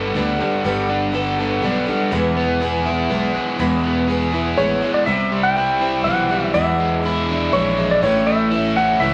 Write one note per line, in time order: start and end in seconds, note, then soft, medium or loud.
0.00 0.11 G1 medium
0.00 0.13 G3 medium
0.00 0.39 G3 medium
0.00 0.16 B3 medium
0.00 1.18 B3 medium
0.00 0.14 D4 medium
0.00 0.15 D4 medium
0.00 0.16 A4 medium
0.14 0.37 D2 medium
0.14 0.39 G3 medium
0.14 0.39 B3 medium
0.14 0.39 D4 medium
0.14 0.37 A4 medium
0.39 0.64 G3 medium
0.39 0.64 B3 soft
0.39 0.64 D4 soft
0.39 0.64 A4 soft
0.64 1.59 G1 medium
0.64 1.11 G3 medium
0.64 1.14 B3 medium
0.64 1.12 D4 medium
0.64 1.14 A4 medium
0.89 1.63 D4 medium
1.12 1.37 G3 medium
1.12 1.38 B3 medium
1.12 1.38 D4 medium
1.12 1.36 A4 medium
1.37 1.62 B3 soft
1.37 1.61 D4 soft
1.37 1.62 A4 soft
1.61 1.85 B1 medium
1.61 1.86 G3 medium
1.61 1.86 B3 medium
1.61 1.87 D4 medium
1.61 1.85 A4 medium
1.86 2.12 G3 medium
1.86 2.11 B3 soft
1.86 2.12 D4 soft
1.86 2.11 A4 medium
2.11 3.06 E1 loud
2.11 2.61 E2 medium
2.11 3.59 E3 medium
2.11 2.59 G#3 medium
2.11 2.60 B3 medium
2.11 2.62 E4 medium
2.11 2.62 G#4 medium
2.37 3.10 B3 medium
2.61 2.85 G#3 medium
2.61 2.86 B3 medium
2.61 2.85 E4 medium
2.61 2.84 G#4 medium
2.85 3.08 G#3 soft
2.85 3.09 B3 soft
2.85 3.10 E4 soft
2.85 3.10 G#4 soft
3.09 3.33 B1 medium
3.09 3.59 G#3 medium
3.09 3.59 B3 medium
3.09 3.61 E4 medium
3.09 3.60 G#4 medium
3.35 4.58 G#3 medium
3.59 4.54 E1 loud
3.59 4.08 E2 medium
3.59 4.09 E3 medium
3.59 4.07 G#3 medium
3.59 4.08 B3 medium
3.59 4.08 E4 medium
3.59 4.09 G#4 medium
3.84 4.56 B3 medium
4.08 4.33 G#3 medium
4.08 4.32 B3 medium
4.08 4.31 E4 medium
4.08 4.31 G#4 medium
4.32 4.56 G#3 soft
4.32 4.57 B3 soft
4.32 4.57 E4 soft
4.32 4.57 G#4 soft
4.57 4.80 A1 medium
4.57 4.82 G#3 medium
4.57 4.82 B3 medium
4.57 4.81 E4 medium
4.57 4.80 G#4 medium
4.57 4.94 C#5 medium
4.81 5.07 G#3 soft
4.81 5.07 B3 medium
4.81 5.07 E4 soft
4.81 5.06 G#4 medium
4.94 5.06 D5 medium
5.06 6.01 C2 loud
5.06 5.56 C3 medium
5.06 5.55 E3 medium
5.06 5.55 G3 medium
5.06 5.56 C4 medium
5.06 5.57 E4 medium
5.06 5.41 E5 medium
5.32 6.29 G3 medium
5.43 6.04 G5 loud
5.55 5.80 E3 medium
5.55 5.81 G3 medium
5.55 5.81 C4 medium
5.55 5.79 E4 medium
5.80 6.05 G3 soft
5.80 6.06 C4 soft
5.80 6.05 E4 soft
6.04 6.50 B1 medium
6.04 6.30 E3 medium
6.04 6.30 G3 medium
6.04 6.30 C4 medium
6.04 6.28 E4 medium
6.04 6.54 F#5 medium
6.29 6.54 G3 soft
6.29 6.55 C4 soft
6.29 6.54 E4 soft
6.54 7.03 E2 medium
6.54 7.49 E2 loud
6.54 7.04 B2 medium
6.54 7.02 E3 medium
6.54 7.02 G#3 medium
6.54 7.03 D4 medium
6.54 7.05 E4 medium
6.54 7.55 E5 medium
6.80 7.76 G#3 medium
7.03 7.52 E3 medium
7.03 7.52 G#3 medium
7.03 7.53 D4 medium
7.03 7.55 E4 medium
7.29 8.02 D4 medium
7.52 7.98 A#1 medium
7.52 7.77 E3 medium
7.52 7.77 G#3 medium
7.52 7.77 D4 medium
7.52 7.76 E4 medium
7.52 7.91 C#5 medium
7.77 8.02 E3 soft
7.77 8.03 G#3 soft
7.77 8.02 D4 soft
7.77 8.02 E4 medium
7.91 8.02 D5 medium
8.02 8.96 A1 loud
8.02 8.51 A2 medium
8.02 8.51 E3 medium
8.02 8.52 A3 medium
8.02 8.52 C#4 medium
8.02 8.54 E4 medium
8.02 8.25 C#5 medium
8.27 9.14 A3 medium
8.27 8.72 E5 medium
8.51 8.75 E3 medium
8.51 8.76 A3 medium
8.51 8.76 C#4 medium
8.51 8.75 E4 medium
8.76 9.00 A3 soft
8.76 9.01 C#4 soft
8.76 9.00 E4 soft
8.76 9.01 F#5 medium
9.00 9.14 C#2 medium
9.00 9.14 E3 medium
9.00 9.14 A3 medium
9.00 9.14 C#4 medium
9.00 9.14 E4 medium
9.00 9.14 E5 medium